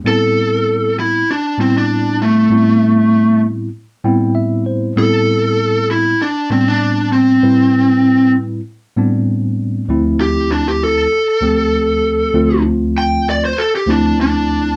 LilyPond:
<<
  \new Staff \with { instrumentName = "Lead electric guitar" } { \time 4/4 \key a \minor \tempo 4 = 98 a'4. e'8 d'8 c'16 d'8. a8~ | a4. r2 r8 | a'4. e'8 d'8 c'16 d'8. c'8~ | c'4. r2 r8 |
r8 g'8 d'16 g'16 a'2~ a'8~ | a'8 r8 g''8 d''16 c''16 a'16 g'16 d'8 d'4 | }
  \new Staff \with { instrumentName = "Tine electric piano" } { \time 4/4 \key a \minor r1 | r2 r8 g''8 e''8 c''8 | r1 | r1 |
r1 | r1 | }
  \new Staff \with { instrumentName = "Tine electric piano" } { \time 4/4 \key a \minor <a, g b c' e'>2 r8 <a, g b c' e'>4. | <a, g b c' e'>2 r8 <a, g b c' e'>4. | <a, g b c' e'>2 r8 <a, g b c' d'>4. | <a, g c' e' b'>2 r8 <a, g b c' d'>4. |
<d, f a c' e'>2 r8 <d, f a c' g'>4. | <d, f a c' f'>2 r8 <d, f a c' e'>4. | }
>>